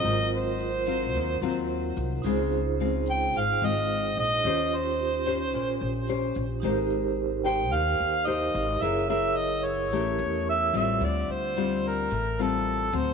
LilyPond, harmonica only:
\new Staff \with { instrumentName = "Harmonica" } { \time 4/4 \key aes \major \tempo 4 = 110 ees''8 c''2. r8 | r4. g''8 f''8 ees''4 ees''8~ | ees''8 c''2. r8 | r4. g''8 f''4 ees''4 |
fes''8 fes''8 ees''8 des''4. e''8 e''8 | \key d \minor d''8 c''4 bes'4 a'4 c''8 | }